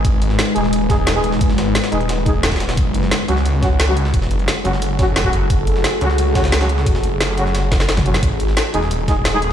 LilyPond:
<<
  \new Staff \with { instrumentName = "Ambient pad" } { \time 4/4 \key fis \dorian \tempo 4 = 176 << { <dis' b'>1~ | <dis' b'>1 | <fis' a'>1~ | <fis' a'>1~ |
<fis' a'>1~ | <fis' a'>1 | <dis' b'>1 | } \\ { gis1~ | gis1 | gis'1~ | gis'1~ |
gis'1~ | gis'1~ | gis'1 | } >> }
  \new Staff \with { instrumentName = "Brass ensemble" } { \time 4/4 \key fis \dorian r4. <gis dis' gis'>16 r8. <gis dis' gis'>16 r8 <gis dis' gis'>16 r8 | r4. <gis dis' gis'>16 r8. <gis dis' gis'>16 r4 r16 | r4. <fis cis' fis'>16 r8. <fis cis' fis'>16 r8 <fis cis' fis'>16 r8 | r4. <fis cis' fis'>16 r8. <fis cis' fis'>16 r8 <fis cis' fis'>16 r8 |
r4. <fis cis' fis'>16 r8. <fis cis' fis'>16 r8 <fis cis' fis'>16 r8 | r4. <fis cis' fis'>16 r4. r16 <fis cis' fis'>16 r16 | r4. <gis dis' gis'>16 r8. <gis dis' gis'>16 r8 <gis dis' gis'>16 r8 | }
  \new Staff \with { instrumentName = "Detuned saw bass" } { \clef bass \time 4/4 \key fis \dorian gis,,4 r8 dis,,2~ dis,,8 | fis,,8 gis,,8 r8 dis,,2~ dis,,8 | fis,,4 r8 cis,2~ cis,8 | e,,8 fis,,8 r8 fis,,4 fis,,4 fis,,8 |
fis,,4 r8 cis,2~ cis,8 | e,,8 fis,,8 fis,,2. | gis,,4 r8 dis,,2~ dis,,8 | }
  \new DrumStaff \with { instrumentName = "Drums" } \drummode { \time 4/4 <hh bd>8 hh16 sn16 <hh sn>8 hh16 sn16 hh8 <hh bd sn>8 <hh sn>8 hh16 sn16 | <hh bd>16 sn16 <hh sn>8 <hh sn>16 <hh sn>16 hh16 hh16 <hh sn>8 <hh bd>8 <hh sn>16 <hh bd sn>32 <hh sn>32 <hh sn>16 <hh sn>16 | <hh bd>8 hh16 sn16 <hh sn>8 hh16 sn16 hh8 <hh bd sn>8 <hh sn>8 hh16 sn16 | <hh bd>16 sn16 hh16 hh16 <hh sn>8 hh16 sn16 hh8 <hh bd sn>8 <hh sn>16 bd16 hh8 |
<hh bd>8 hh16 sn16 <hh sn>8 hh16 sn16 hh8 <hh bd sn>16 <hh sn>16 <hh sn>16 <hh sn>16 hh16 sn16 | <hh bd>16 sn16 hh8 <hh sn>8 hh16 sn16 <hh sn>8 <hh bd sn>16 <hh sn>16 <hh sn>16 <hh bd sn toml>16 hh16 sn16 | <hh bd>8 hh16 sn16 <hh sn>8 hh16 sn16 hh8 <hh bd sn>8 <hh sn>8 hh8 | }
>>